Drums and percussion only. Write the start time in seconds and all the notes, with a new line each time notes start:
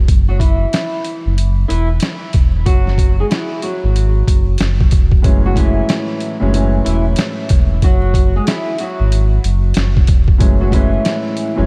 0.08 kick, closed hi-hat
0.40 kick, closed hi-hat
0.73 snare, closed hi-hat
1.04 closed hi-hat
1.38 closed hi-hat
1.70 closed hi-hat
2.00 snare, closed hi-hat
2.33 kick, closed hi-hat
2.66 kick, closed hi-hat
2.87 snare
2.98 kick, closed hi-hat
3.31 snare, closed hi-hat
3.62 closed hi-hat
3.96 closed hi-hat
4.28 kick, closed hi-hat
4.58 snare, closed hi-hat
4.81 kick
4.91 kick, closed hi-hat
5.12 kick
5.24 kick, closed hi-hat
5.56 kick, closed hi-hat
5.89 snare, closed hi-hat
6.20 closed hi-hat
6.54 closed hi-hat
6.86 closed hi-hat
7.16 snare, closed hi-hat
7.49 kick, closed hi-hat
7.82 kick, closed hi-hat
8.14 kick, closed hi-hat
8.47 snare, closed hi-hat
8.79 closed hi-hat
9.12 closed hi-hat
9.44 closed hi-hat
9.74 snare, closed hi-hat
9.97 kick
10.07 kick, closed hi-hat
10.28 kick
10.40 kick, closed hi-hat
10.72 kick, closed hi-hat
11.05 snare, closed hi-hat
11.37 closed hi-hat